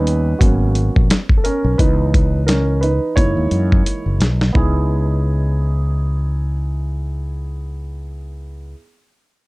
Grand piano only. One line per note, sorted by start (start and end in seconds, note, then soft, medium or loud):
0.00 0.38 G3 medium
0.00 0.38 B3 soft
0.00 0.38 C#4 medium
0.00 0.38 D#4 medium
0.00 0.42 B4 medium
0.39 1.75 F#3 soft
0.39 1.07 A#3 soft
0.39 1.75 B3 soft
0.39 1.44 C#4 medium
0.39 1.05 F#4 medium
1.37 1.44 A4 medium
1.44 1.77 C#4 medium
1.44 1.76 A#4 medium
1.78 3.13 E3 soft
1.78 3.13 B3 soft
1.78 2.82 D#4 medium
1.78 2.43 B4 medium
2.47 2.80 C#4 medium
2.47 2.83 A#4 medium
2.81 3.15 D#4 medium
2.81 3.17 B4 medium
3.16 4.51 E3 soft
3.16 4.51 G#3 soft
3.16 4.51 A#3 soft
3.16 4.51 D#4 medium
3.16 4.17 E4 medium
3.16 4.16 C#5 medium
4.53 8.71 B3 medium
4.53 8.72 D#4 medium
4.53 8.74 E4 medium
4.57 8.75 G#4 medium